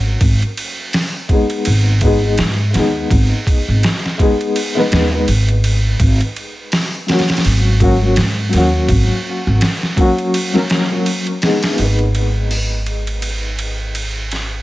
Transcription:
0.00 0.19 G#1 medium
0.21 0.40 G#1 medium
0.21 kick loud
0.21 ride medium
0.42 ride soft
0.57 ride medium
0.93 snare loud
0.93 open hi-hat medium
1.28 1.98 G#3 medium
1.28 1.99 B3 medium
1.28 1.99 D#4 medium
1.28 kick medium
1.28 ride medium
1.33 2.00 G#4 medium
1.50 ride soft
1.65 2.36 G#1 loud
1.65 ride medium
2.01 2.18 G#3 loud
2.01 2.19 B3 medium
2.01 2.19 D#4 medium
2.01 kick medium
2.01 ride medium
2.06 2.20 G#4 loud
2.24 2.32 D#4 medium
2.24 2.33 G#4 medium
2.38 2.71 G#2 medium
2.38 snare medium
2.38 ride medium
2.70 4.13 G#3 medium
2.70 4.15 B3 medium
2.70 ride medium
2.75 3.07 D#2 loud
2.75 4.17 D#4 medium
2.75 4.18 G#4 medium
2.75 snare soft
3.10 3.29 G#1 loud
3.10 kick loud
3.10 ride medium
3.47 kick loud
3.47 ride medium
3.68 3.82 G#1 loud
3.83 snare loud
3.83 ride medium
4.06 snare soft
4.18 4.71 G#3 medium
4.18 4.71 B3 medium
4.18 4.72 D#4 medium
4.18 kick medium
4.18 ride medium
4.22 4.73 G#4 loud
4.41 ride soft
4.56 ride medium
4.75 5.07 G#3 loud
4.75 5.08 B3 medium
4.75 5.08 D#4 medium
4.75 snare soft
4.79 5.09 B4 medium
4.92 5.24 D#2 medium
4.92 snare loud
4.92 ride medium
5.11 5.20 G#3 medium
5.11 5.21 B3 medium
5.11 5.22 D#4 medium
5.15 5.22 B4 medium
5.28 5.97 G#1 medium
5.28 ride medium
5.49 ride soft
5.64 ride medium
6.00 6.18 G#1 loud
6.00 kick loud
6.00 ride medium
6.21 ride soft
6.36 ride medium
6.72 snare medium
6.72 open hi-hat medium
7.07 7.76 F#3 medium
7.07 7.77 A#3 medium
7.07 7.78 C#4 medium
7.07 snare medium
7.07 open hi-hat medium
7.11 7.78 F#4 medium
7.19 snare medium
7.19 open hi-hat medium
7.29 snare medium
7.29 open hi-hat medium
7.37 snare medium
7.37 open hi-hat medium
7.45 8.14 G#1 medium
7.45 ride medium
7.80 7.96 F#3 loud
7.80 7.97 A#3 medium
7.80 7.97 C#4 medium
7.80 7.98 F#4 loud
7.80 kick loud
7.80 ride medium
8.01 8.10 F#3 medium
8.01 8.10 A#3 medium
8.01 8.11 C#4 medium
8.05 8.12 F#4 medium
8.16 8.50 G#2 medium
8.16 snare loud
8.16 ride medium
8.49 9.92 F#3 medium
8.49 9.93 A#3 medium
8.49 ride medium
8.54 8.86 D#2 loud
8.54 9.95 C#4 medium
8.54 9.96 F#4 loud
8.54 snare soft
8.89 9.07 G#1 medium
8.89 kick loud
8.89 ride medium
9.47 9.60 G#1 loud
9.61 snare loud
9.61 ride medium
9.83 snare soft
9.96 10.49 F#3 medium
9.96 10.50 A#3 medium
9.96 10.50 C#4 medium
9.96 kick medium
9.96 ride medium
10.00 10.51 F#4 loud
10.18 ride soft
10.34 ride medium
10.53 10.85 F#3 medium
10.53 10.86 A#3 medium
10.53 10.86 C#4 medium
10.53 snare soft
10.58 10.87 A#4 loud
10.70 snare loud
10.70 ride medium
10.90 11.38 F#3 medium
10.90 11.39 A#3 medium
10.90 11.39 C#4 medium
10.94 11.40 F#4 medium
11.06 ride medium
11.27 ride soft
11.42 12.14 G#3 medium
11.42 11.74 B3 medium
11.42 11.77 D#4 medium
11.42 11.79 G#4 medium
11.42 snare loud
11.42 open hi-hat medium
11.63 snare loud
11.63 open hi-hat medium
11.75 14.62 G#1 medium
11.75 14.62 B3 medium
11.75 14.62 D#4 medium
11.75 ride medium
11.81 14.62 G#4 medium
11.81 14.62 B4 medium
11.99 ride soft
12.15 ride medium
12.51 open hi-hat medium
12.86 ride medium
13.07 ride soft
13.22 ride medium
13.59 ride medium
13.95 ride medium
14.32 snare soft
14.32 ride medium

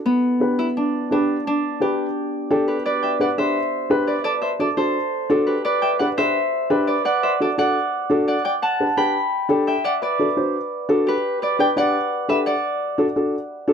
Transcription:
0.00 0.40 E4 loud
0.00 0.85 A4 loud
0.06 3.16 B3 medium
0.40 0.65 D4 medium
0.40 0.65 G4 medium
0.40 0.66 B4 medium
0.59 0.65 E4 loud
0.77 1.12 D4 medium
1.11 1.35 D4 medium
1.11 1.47 D4 medium
1.11 1.36 G4 medium
1.11 1.36 B4 medium
1.47 4.27 D4 loud
1.80 2.05 D4 medium
1.80 2.05 G4 medium
1.80 2.68 G4 medium
1.80 2.06 B4 medium
2.51 2.75 D4 medium
2.51 2.75 G4 medium
2.51 2.75 A4 loud
2.68 3.27 G4 soft
2.68 2.86 B4 medium
2.86 3.45 B4 medium
2.86 3.20 D5 medium
3.03 3.10 E5 medium
3.03 3.09 G5 medium
3.20 3.26 D4 medium
3.20 3.27 G4 medium
3.20 3.27 B4 medium
3.20 3.27 D5 medium
3.20 3.27 F#5 medium
3.38 3.56 D4 medium
3.38 3.56 G4 medium
3.38 3.57 B4 medium
3.38 4.14 C5 medium
3.38 4.41 E5 medium
3.90 4.15 D4 medium
3.90 4.15 G4 medium
3.90 4.15 B4 loud
4.07 4.48 B4 medium
4.07 4.24 D5 medium
4.24 4.31 A4 medium
4.24 4.30 D5 loud
4.42 4.48 C5 medium
4.42 4.48 E5 medium
4.59 4.66 D4 medium
4.59 4.66 F#4 medium
4.59 4.66 A4 medium
4.59 4.67 A4 medium
4.59 4.66 D5 medium
4.77 4.96 D4 medium
4.77 4.96 F#4 medium
4.77 6.97 A4 medium
4.77 4.96 A4 medium
4.77 5.53 C5 medium
5.30 5.54 D4 loud
5.30 5.55 F#4 medium
5.30 5.55 A4 loud
5.47 6.05 G4 medium
5.47 5.65 B4 medium
5.65 6.23 B4 medium
5.65 5.99 D5 loud
5.82 5.88 E5 medium
5.82 5.88 G5 medium
5.99 6.06 D4 medium
5.99 6.06 G4 medium
5.99 6.07 B4 medium
5.99 6.06 D5 medium
5.99 6.05 F#5 medium
6.17 6.36 D4 medium
6.17 6.36 G4 medium
6.17 6.36 B4 medium
6.17 6.94 C5 medium
6.17 7.23 E5 loud
6.70 6.94 D4 loud
6.70 6.95 G4 medium
6.70 6.95 B4 loud
6.87 7.29 B4 medium
6.87 7.05 D5 medium
7.05 7.41 D5 medium
7.05 7.58 F#5 medium
7.23 7.29 C5 medium
7.23 7.29 E5 medium
7.40 7.46 D4 medium
7.40 7.46 F#4 medium
7.40 7.46 A4 medium
7.40 7.48 A4 medium
7.40 7.47 D5 medium
7.58 7.76 D4 medium
7.58 7.76 F#4 medium
7.58 7.76 A4 medium
7.58 8.27 D5 medium
7.58 8.28 F#5 loud
8.10 8.34 D4 medium
8.10 8.35 F#4 medium
8.10 8.35 A4 loud
8.28 8.45 D5 medium
8.28 8.51 F#5 medium
8.45 8.51 D5 medium
8.45 8.51 G5 loud
8.62 9.03 F#5 medium
8.62 10.08 A5 medium
8.80 8.86 D4 medium
8.80 8.86 G4 medium
8.80 8.86 B4 medium
8.97 9.15 D4 medium
8.97 9.15 G4 medium
8.97 9.16 B4 medium
8.97 9.67 G5 medium
8.97 10.33 B5 loud
9.49 9.74 D4 medium
9.49 9.74 G4 medium
9.49 9.74 A4 loud
9.67 11.39 E5 medium
9.67 9.91 G5 medium
9.84 9.91 D5 medium
9.84 9.91 F#5 loud
10.02 11.08 B4 medium
10.02 11.43 D5 medium
10.19 10.25 D4 medium
10.19 10.25 F#4 medium
10.19 10.26 A4 medium
10.37 10.55 D4 medium
10.37 10.55 F#4 medium
10.37 10.55 C5 medium
10.89 11.13 D4 medium
10.89 11.13 F#4 medium
10.89 11.14 A4 loud
11.07 11.84 G4 medium
11.07 11.42 B4 medium
11.42 12.29 B4 medium
11.42 11.59 D5 medium
11.59 11.65 D4 medium
11.59 11.65 G4 medium
11.59 11.65 B4 medium
11.59 11.66 D5 medium
11.59 11.66 G5 loud
11.76 11.95 D4 medium
11.76 11.95 G4 medium
11.76 12.46 D5 medium
11.76 11.95 D5 medium
11.76 12.46 F#5 loud
12.28 12.53 D4 medium
12.28 12.53 G4 medium
12.28 12.53 A4 medium
12.28 12.35 B4 medium
12.28 12.35 E5 loud
12.46 13.73 D5 medium
12.46 13.73 F#5 medium
12.98 13.04 D4 medium
12.98 13.04 F#4 medium
12.98 13.05 A4 medium
13.16 13.34 D4 medium
13.16 13.34 F#4 medium
13.16 13.35 A4 medium
13.68 13.73 D4 medium
13.68 13.73 F#4 medium
13.68 13.73 A4 loud

